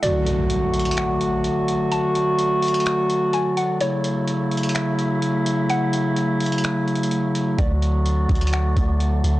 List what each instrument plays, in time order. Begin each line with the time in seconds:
0.03 woodwind section D3 F#3 A3 F#4, synth texture A3 F#4 D5, synth pluck D5, closed hi-hat, impact
0.26 closed hi-hat
0.50 closed hi-hat
0.74 closed hi-hat
0.79 closed hi-hat
0.85 closed hi-hat
0.91 closed hi-hat
0.98 synth pluck F#5, finger snap
1.21 closed hi-hat
1.44 closed hi-hat
1.68 closed hi-hat
1.92 synth pluck A5, closed hi-hat
2.15 closed hi-hat
2.39 closed hi-hat
2.62 closed hi-hat, open hi-hat
2.68 closed hi-hat
2.74 closed hi-hat
2.80 closed hi-hat
2.86 finger snap, closed hi-hat
3.10 closed hi-hat
3.33 synth pluck G#5, closed hi-hat
3.57 synth pluck F#5, closed hi-hat
3.80 woodwind section C#3 A3 E4, synth pluck C#5, synth texture E5, closed hi-hat
4.04 closed hi-hat
4.28 closed hi-hat
4.51 closed hi-hat
4.57 closed hi-hat
4.63 closed hi-hat
4.69 closed hi-hat
4.75 synth pluck E5, finger snap, closed hi-hat
4.99 closed hi-hat
5.22 closed hi-hat
5.46 closed hi-hat
5.70 synth pluck F#5, closed hi-hat
5.93 closed hi-hat
6.16 closed hi-hat
6.40 closed hi-hat, open hi-hat
6.46 closed hi-hat
6.52 closed hi-hat
6.58 closed hi-hat
6.64 finger snap, closed hi-hat
6.88 closed hi-hat
6.95 closed hi-hat
7.03 closed hi-hat
7.11 closed hi-hat
7.35 closed hi-hat
7.58 808-style bass D2, woodwind section D3 A3 F#4, synth pluck D5, synth texture D5, kick, closed hi-hat
7.82 closed hi-hat
8.06 closed hi-hat
8.29 808-style bass D2, kick, closed hi-hat
8.35 closed hi-hat
8.41 closed hi-hat
8.47 closed hi-hat
8.53 synth pluck F#5, finger snap, closed hi-hat
8.77 808-style bass D2, kick, closed hi-hat
9.00 closed hi-hat
9.24 808-style bass D2, closed hi-hat